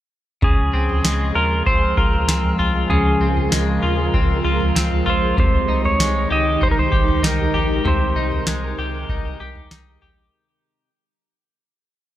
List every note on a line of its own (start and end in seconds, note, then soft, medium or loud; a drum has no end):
0.42 0.70 C#2 loud
0.42 2.89 C#3 medium
0.42 5.34 F3 medium
0.42 10.29 G#3 medium
0.42 5.34 F4 medium
0.42 2.88 G#4 medium
0.42 1.32 G#4 medium
0.42 kick loud
0.42 floor tom medium
0.73 1.01 C#2 medium
0.73 1.66 C4 medium
0.89 floor tom medium
1.04 1.32 C#2 loud
1.04 3.52 G#3 medium
1.04 snare loud
1.35 1.63 D#2 medium
1.35 1.96 F4 medium
1.35 1.66 A#4 medium
1.66 1.94 C#2 loud
1.66 2.28 C4 medium
1.66 1.98 C5 medium
1.66 kick medium
1.66 floor tom medium
1.97 2.24 C#2 loud
1.97 2.58 F4 medium
1.97 2.55 A#4 medium
1.97 kick medium
2.13 floor tom medium
2.27 2.55 C#2 medium
2.27 3.20 C4 medium
2.27 snare loud
2.44 floor tom medium
2.59 2.86 C2 medium
2.59 3.81 F4 medium
2.59 floor tom medium
2.89 3.17 C#2 loud
2.89 5.37 C#3 medium
2.89 4.10 G#4 medium
2.89 5.35 A#4 medium
2.89 floor tom medium
3.20 3.48 C#2 loud
3.20 4.14 C4 medium
3.37 floor tom soft
3.52 3.79 C#2 loud
3.52 5.99 G#3 medium
3.52 snare loud
3.83 4.10 D#2 medium
3.83 4.43 F4 medium
4.14 4.41 C#2 loud
4.14 4.75 C4 medium
4.14 kick medium
4.14 floor tom medium
4.45 4.72 C#2 medium
4.45 5.05 F4 medium
4.60 floor tom medium
4.75 5.03 C#2 medium
4.75 5.68 C4 medium
4.75 snare loud
4.91 floor tom medium
5.06 5.34 A#1 medium
5.06 5.43 F4 medium
5.06 5.38 C5 medium
5.06 floor tom soft
5.37 5.65 C2 loud
5.37 7.84 C3 medium
5.37 10.28 D#3 medium
5.37 7.82 D#4 medium
5.37 10.28 G4 medium
5.37 5.85 C5 medium
5.37 kick medium
5.37 floor tom loud
5.68 5.95 C2 medium
5.68 6.61 D#4 medium
5.85 6.32 C#5 medium
5.85 floor tom medium
5.99 6.26 C2 loud
5.99 8.47 G#3 medium
5.99 snare loud
6.30 6.58 C#2 medium
6.30 6.91 G4 medium
6.30 6.63 D#5 medium
6.61 6.89 C2 medium
6.61 7.23 D#4 medium
6.61 6.69 C5 medium
6.61 kick medium
6.61 floor tom medium
6.71 6.77 A#4 medium
6.79 7.22 C5 medium
6.92 7.19 C2 medium
6.92 7.54 G4 medium
6.92 kick medium
7.08 floor tom medium
7.22 7.50 C2 loud
7.22 8.16 D#4 medium
7.22 snare medium
7.27 7.89 A#4 medium
7.39 floor tom medium
7.54 7.81 A#1 medium
7.54 8.78 G4 medium
7.54 floor tom medium
7.84 8.12 C2 loud
7.84 10.89 C3 medium
7.84 10.30 A#4 medium
7.84 9.06 C5 medium
7.84 floor tom medium
8.15 8.43 C2 medium
8.15 9.09 D#4 medium
8.32 floor tom medium
8.47 8.74 C2 loud
8.47 10.89 G#3 medium
8.47 snare loud
8.78 9.05 C#2 medium
8.78 9.40 G4 medium
9.09 9.36 C2 loud
9.09 9.71 D#4 medium
9.09 kick medium
9.09 floor tom medium
9.40 9.67 C2 medium
9.40 10.01 G4 medium
9.55 floor tom medium
9.71 9.98 C2 medium
9.71 10.89 D#4 medium
9.71 snare loud
10.02 10.29 A#1 medium
10.02 10.89 G4 medium
10.02 floor tom medium